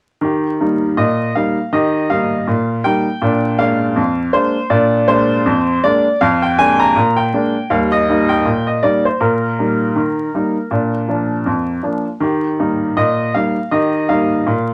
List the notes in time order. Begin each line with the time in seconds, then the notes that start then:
0.21 D#3 G4
0.60 G3 A#3 D#4
0.97 A#2 D#5
1.35 G3 A#3 D#4 F5
1.73 D#3 G4 D#5
2.10 G3 A#3 D#4 F5
2.47 A#2
2.84 G3 A#3 D#4 G5
3.22 A#2 D4
3.59 G#3 A#3 D4 F5
3.96 F2
4.33 G#3 A#3 D4 C5
4.70 A#2 D4 D5
5.08 G#3 A#3 D4 C5
5.46 F2
5.84 G#3 A#3 D4 D5
6.21 F2 F5
6.42 G5
6.58 G#3 A#3 D4 G#5
6.80 A#5
6.96 A#2
7.16 G5
7.33 G#3 A#3 D4
7.70 D#2 G3 F5
7.92 D#5
8.09 G3 A#3 D#4
8.29 G5
8.45 A#2
8.67 D#5
8.83 G3 A#3 D#4 D5
9.05 C5
9.20 A#2 A#4
9.59 G3 A#3 D#4
9.96 D#3
10.34 G3 A#3 D#4
10.71 A#2 D4
11.08 F3 A#3 D4
11.46 F2
11.83 F3 A#3 D4
12.20 D#3 G4
12.59 G3 A#3 D#4
12.97 A#2 D#5
13.34 G3 A#3 D#4 F5
13.71 D#3 G4 D#5
14.09 G3 A#3 D#4 F5
14.47 A#2